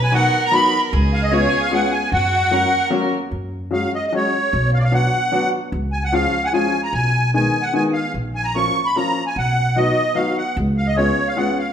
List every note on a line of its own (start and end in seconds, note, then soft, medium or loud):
0.00 0.25 B1 loud
0.00 0.15 B4 medium
0.00 0.13 G#5 medium
0.12 0.32 F#3 medium
0.12 0.33 B3 medium
0.12 0.33 D#4 medium
0.12 0.33 F#4 medium
0.12 0.94 A#4 medium
0.12 0.44 F#5 loud
0.45 0.54 A#5 medium
0.51 0.72 F#3 medium
0.51 0.72 B3 medium
0.51 0.72 D#4 medium
0.51 0.72 F#4 medium
0.51 0.81 B5 medium
0.93 1.44 C#2 loud
0.93 2.12 G#4 medium
1.13 1.23 F5 medium
1.23 1.33 D#5 medium
1.31 1.52 G#3 medium
1.31 1.52 B3 medium
1.31 1.52 C#4 medium
1.31 1.52 F4 medium
1.31 1.62 C#5 medium
1.61 1.72 F5 medium
1.71 1.91 G#3 medium
1.71 1.92 B3 medium
1.71 1.92 C#4 medium
1.71 1.92 F4 medium
1.71 1.93 F#5 medium
1.92 2.10 G#5 medium
2.12 2.64 F#2 medium
2.12 2.53 F#4 medium
2.12 2.88 F#5 medium
2.51 2.72 F#3 medium
2.51 2.72 A#3 medium
2.51 2.72 C#4 medium
2.51 2.72 F#4 medium
2.51 3.12 A#4 medium
2.90 3.11 F#3 medium
2.90 3.12 A#3 medium
2.90 3.12 C#4 medium
2.90 3.12 F#4 medium
3.31 3.84 F#2 medium
3.71 3.92 F#3 medium
3.71 3.92 G#3 medium
3.71 3.92 C#4 soft
3.71 3.92 F#4 medium
3.71 3.92 F5 medium
3.95 4.06 D#5 medium
4.07 4.13 D#5 medium
4.12 4.33 F#3 medium
4.12 4.33 G#3 medium
4.12 4.33 C#4 soft
4.12 4.33 F#4 medium
4.12 4.71 C#5 medium
4.53 5.05 B1 loud
4.74 4.79 F5 medium
4.79 4.83 D5 medium
4.83 4.93 F5 medium
4.92 5.13 F#3 medium
4.92 5.13 B3 soft
4.92 5.13 D4 medium
4.92 5.13 F#4 medium
4.92 5.50 F#5 medium
5.32 5.53 F#3 medium
5.32 5.53 B3 medium
5.32 5.53 D4 medium
5.32 5.53 F#4 medium
5.72 6.25 C#2 medium
5.92 6.03 G#5 medium
6.04 6.14 F#5 medium
6.12 6.33 F3 medium
6.12 6.33 G#3 medium
6.12 6.33 C#4 medium
6.12 6.33 F4 medium
6.12 6.44 F5 medium
6.44 6.52 F#5 medium
6.44 6.49 G#5 medium
6.53 6.73 F3 medium
6.53 6.73 G#3 medium
6.53 6.74 C#4 medium
6.53 6.74 F4 medium
6.53 6.81 G#5 medium
6.83 6.94 A#5 medium
6.93 7.46 B1 medium
6.93 7.31 G#5 medium
7.34 7.54 D#3 medium
7.34 7.54 G#3 medium
7.34 7.54 B3 medium
7.34 7.54 D#4 medium
7.34 7.65 G#5 medium
7.62 7.74 F#5 medium
7.73 7.94 D#3 medium
7.73 7.95 G#3 medium
7.73 7.94 B3 medium
7.73 7.95 D#4 medium
7.73 7.84 G#5 medium
7.93 8.13 F5 medium
8.14 8.67 A#1 medium
8.35 8.46 G#5 medium
8.44 8.55 A#5 medium
8.55 8.76 F3 medium
8.55 8.76 A#3 medium
8.55 8.76 C#4 medium
8.55 8.76 F4 medium
8.55 8.87 C#6 medium
8.86 8.96 B5 medium
8.96 9.17 F3 medium
8.96 9.17 A#3 medium
8.96 9.16 C#4 medium
8.96 9.16 F4 medium
8.96 9.24 A#5 medium
9.27 9.37 G#5 medium
9.36 9.88 B1 medium
9.36 9.79 F#5 medium
9.76 9.97 F#3 medium
9.76 9.97 B3 medium
9.76 9.97 D#4 medium
9.76 9.97 F#4 medium
9.76 10.18 D#5 medium
10.15 10.36 F#3 medium
10.15 10.36 B3 medium
10.15 10.37 D#4 medium
10.15 10.37 F#4 medium
10.15 10.37 F5 medium
10.38 10.56 F#5 medium
10.57 11.09 C#2 loud
10.77 10.88 F5 medium
10.87 10.96 D#5 medium
10.96 11.17 G#3 medium
10.96 11.18 B3 medium
10.96 11.18 C#4 medium
10.96 11.18 F4 medium
10.96 11.28 C#5 medium
11.28 11.38 F5 medium
11.37 11.57 G#3 medium
11.37 11.58 B3 medium
11.37 11.58 C#4 medium
11.37 11.58 F4 medium
11.37 11.58 F#5 medium
11.59 11.73 F5 medium